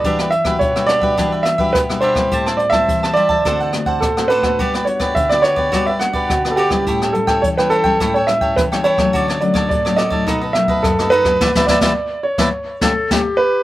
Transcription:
<<
  \new Staff \with { instrumentName = "Grand piano" } { \time 4/4 \key a \mixolydian \tempo 4 = 106 d''8 e''8 cis''8 d''4 e''8 b'8 c''8~ | c''8 d''16 e''8. d''4. a'8 b'8~ | b'8 cis''8 e''16 d''16 cis''8. e''16 fis''8 fis'16. a'32 g'8~ | g'8 a'8 cis''16 b'16 a'8. cis''16 e''8 b'8 cis''8~ |
cis''8 d''8 d''8 ees''4 e''8 a'8 b'8~ | b'8 d''4 cis''4. r8 b'8 | }
  \new Staff \with { instrumentName = "Cavaquinho" } { \time 4/4 \key a \mixolydian <d' g' b' e''>16 <g' b' e''>16 r16 <g' b' e''>8 <g' b' e''>16 <d' g' b' e''>16 <g' b' e''>16 <d' g' b' e''>16 <g' b' e''>16 r16 <g' b' e''>8 <g' b' e''>16 <d' g' b' e''>16 <g' b' e''>16 | <g' c'' e'' a''>16 <c'' e'' a''>16 r16 <c'' e'' a''>8 <c'' e'' a''>16 <g' c'' e'' a''>16 <c'' e'' a''>16 <d' a' c'' fis''>16 <a' c'' fis''>16 r16 <a' c'' fis''>8 <a' c'' fis''>16 <d' a' c'' fis''>16 <a' c'' fis''>16 | <fis' g' b' d''>16 <g' b' d''>16 r16 <g' b' d''>8 <g' b' d''>16 <fis' g' b' d''>16 <g' b' d''>16 <fis' g' b' d''>16 <g' b' d''>16 r16 <g' b' d''>8 <g' b' d''>16 <fis' g' b' d''>16 <g' b' d''>16 | <e' a' cis'' g''>16 <a' cis'' g''>16 r16 <a' cis'' g''>8 <a' cis'' g''>16 <e' a' cis'' g''>16 <a' cis'' g''>16 <e' a' cis'' g''>16 <a' cis'' g''>16 r16 <a' cis'' g''>8 <a' cis'' g''>16 <e' a' cis'' g''>16 <a' cis'' g''>16 |
<fis' a' cis'' d''>16 <a' cis'' d''>16 r16 <a' cis'' d''>8 <a' cis'' d''>16 <fis' a' cis'' d''>16 <a' cis'' d''>16 <dis' a' b' dis''>16 <a' b' dis''>16 r16 <a' b' dis''>8 <a' b' dis''>16 <dis' a' b' dis''>16 <a' b' dis''>16 | <b' d'' e''>16 <b' d'' e''>16 <b' d'' e''>16 <b' d'' e''>16 r8. <b' d'' e''>16 r8 <g' a' cis''>16 r16 <g' a' cis''>16 r8. | }
  \new Staff \with { instrumentName = "Clarinet" } { \time 4/4 \key a \mixolydian r1 | r1 | r1 | r1 |
r1 | r2 r8 a'8 g'4 | }
  \new Staff \with { instrumentName = "Nylon-string guitar" } { \time 4/4 \key a \mixolydian << { <g d' fis'>8 r16 <g d' fis'>8 <g d' fis'>8 <g d' fis'>16 <g d' fis'>8. <g d' fis'>8 <g d' fis'>8 <g c' e'>16~ | <g c' e'>8. <g c' e'>8. <g c' e'>16 r16 <a c' fis'>8 <a c' fis'>8. <a c' fis'>8 <b d' fis'>16~ | <b d' fis'>8 <b d' fis'>8. <b d' fis'>8 <b d' fis'>16 <b d' fis'>16 r16 <b d' fis'>8. <b d' fis'>8 <g cis' e'>16~ | <g cis' e'>8 <g cis' e'>8. <g cis' e'>8 <g cis' e'>16 <g cis' e'>16 r16 <g cis' e'>8. <g cis' e'>8 <fis a cis'>16~ |
<fis a cis'>8 <fis a cis'>8. <fis a cis'>8 <fis a ees'>8. <fis a dis'>8 r16 <fis a dis'>8 <b d' g'>16 | <e g b>16 <e g b>16 <e g b>16 <e g b>16 r8. <e g b>16 r8 <g a cis'>16 r16 <g a cis'>16 r8. | } \\ { e4 b,4 e4 b,4 | a,4 e4 d4 a,4 | g4 d4 g4 d4 | a,4 e4 a,4 e4 |
d4 a,4 b,4 fis,4 | r1 | } >> }
  \new DrumStaff \with { instrumentName = "Drums" } \drummode { \time 4/4 <hh bd>16 <hh ss>16 hh16 <hh bd ss>16 <hh bd>16 <hh ss>16 <hh ss>16 bd16 <hh bd ss>8 <hh ss>16 <hh bd>16 <hh bd ss>16 ss16 hh16 <hh bd ss>16 | <hh bd>16 <hh ss>16 hh16 <hh bd ss>16 <hh bd>16 ss16 hh16 bd16 <hh bd ss>16 hh16 <hh ss>16 <hh bd>16 <hh bd ss>16 ss16 hh16 <hh bd ss>16 | <hh bd>16 <hh ss>16 hh16 <hh bd ss>16 <hh bd>16 <hh ss>16 <hh ss>16 bd16 <hh bd ss>8 <hh ss>16 <hh bd>16 <hh bd ss>16 ss16 hh16 <hh bd ss>16 | <hh bd>16 <hh ss>16 hh16 <bd ss>16 <hh bd>16 ss16 hh16 bd16 <hh bd ss>16 hh16 <hh ss>16 <hh bd>16 <hh bd ss>16 ss16 hh16 <hh bd ss>16 |
<hh bd>16 <hh ss>16 hh16 <bd ss>16 <hh bd>16 <hh ss>16 <hh ss>16 bd16 <hh bd ss>8 <hh ss>16 <hh bd>16 <hh bd ss>16 ss16 hh16 <hh bd ss>16 | <bd sn>16 <bd sn>16 <bd sn>16 <bd sn>16 r8. <bd sn>16 r8 <bd sn>8 <bd sn>4 | }
>>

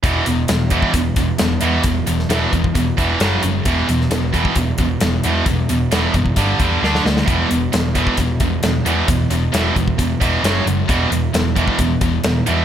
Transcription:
<<
  \new Staff \with { instrumentName = "Distorted electric guitar" } { \clef bass \time 4/4 \key e \dorian \tempo 4 = 133 <e, b, e>8 <e, b,>8 <e, b,>8 <e, b, e>8 <e, b,>8 <e, b,>8 <e, b,>8 <e, b, e>8 | <e, b,>8 <e, b,>8 <e, b, e>8 <e, b,>8 <e, b,>8 <e, b, e>8 <fis, cis fis>8 <fis, cis>8 | <e, b, e>8 <e, b,>8 <e, b,>8 <e, b, e>8 <e, b,>8 <e, b,>8 <e, b,>8 <e, b, e>8 | <e, b,>8 <e, b,>8 <e, b, e>8 <e, b,>8 <g, d g>8 <g, d g>8 <d a d'>8 <d a>8 |
<e, b, e>8 <e, b,>8 <e, b,>8 <e, b, e>8 <e, b,>8 <e, b,>8 <e, b,>8 <e, b, e>8 | <e, b,>8 <e, b,>8 <e, b, e>8 <e, b,>8 <e, b,>8 <e, b, e>8 <fis, cis fis>8 <fis, cis>8 | <e, b, e>8 <e, b,>8 <e, b,>8 <e, b, e>8 <e, b,>8 <e, b,>8 <e, b,>8 <e, b, e>8 | }
  \new Staff \with { instrumentName = "Distorted electric guitar" } { \clef bass \time 4/4 \key e \dorian <e, b, e>8 <e, b,>8 <e, b,>8 <e, b, e>8 <e, b,>8 <e, b,>8 <e, b,>8 <e, b, e>8 | <e, b,>8 <e, b,>8 <e, b, e>8 <e, b,>8 <e, b,>8 <e, b, e>8 <fis, cis fis>8 <fis, cis>8 | <e, b, e>8 <e, b,>8 <e, b,>8 <e, b, e>8 <e, b,>8 <e, b,>8 <e, b,>8 <e, b, e>8 | <e, b,>8 <e, b,>8 <e, b, e>8 <e, b,>8 <g, d g>8 <g, d g>8 <d a d'>8 <d a>8 |
<e, b, e>8 <e, b,>8 <e, b,>8 <e, b, e>8 <e, b,>8 <e, b,>8 <e, b,>8 <e, b, e>8 | <e, b,>8 <e, b,>8 <e, b, e>8 <e, b,>8 <e, b,>8 <e, b, e>8 <fis, cis fis>8 <fis, cis>8 | <e, b, e>8 <e, b,>8 <e, b,>8 <e, b, e>8 <e, b,>8 <e, b,>8 <e, b,>8 <e, b, e>8 | }
  \new Staff \with { instrumentName = "Picked electric bass" } { \clef bass \time 4/4 \key e \dorian e,,8 e,,8 e,,4 e,,8 e,,8 e,,8 e,8 | e,,8 e,,8 e,,8 e,,8 e,,8 e,,8 fis,,8 fis,,8 | e,,8 e,,8 e,,4 e,,8 e,,8 e,,8 e,8 | e,,8 e,,8 e,,8 fis,,8 g,,8 e,8 d,8 d,8 |
e,,8 e,,8 e,,4 e,,8 e,,8 e,,8 e,8 | e,,8 e,,8 e,,8 e,,8 e,,8 e,,8 fis,,8 fis,,8 | e,,8 e,,8 e,,4 e,,8 e,,8 e,,8 e,8 | }
  \new DrumStaff \with { instrumentName = "Drums" } \drummode { \time 4/4 <hh bd>8 hh8 <hh sn>8 <hh bd>16 bd16 <hh bd>8 <hh bd>8 <hh sn>8 hh8 | <hh bd>8 hh16 sn16 <hh sn>8 <hh bd>16 bd16 <hh bd>8 <hh bd>8 <hh sn>8 hh8 | <hh bd>8 hh16 sn16 <hh sn>8 <hh bd>16 bd16 <hh bd>8 <hh bd>8 <hh sn>8 hh8 | <hh bd>8 hh8 <hh sn>8 <hh bd>16 bd16 <hh bd>8 <hh bd>8 sn16 sn16 sn16 sn16 |
<hh bd>8 hh8 <hh sn>8 <hh bd>16 bd16 <hh bd>8 <hh bd>8 <hh sn>8 hh8 | <hh bd>8 hh8 <hh sn>8 <hh bd>16 bd16 <hh bd>8 <hh bd>8 <hh sn>8 hh8 | <hh bd>8 hh8 <hh sn>8 <hh bd>16 bd16 <hh bd>8 <hh bd>8 <hh sn>8 hh8 | }
>>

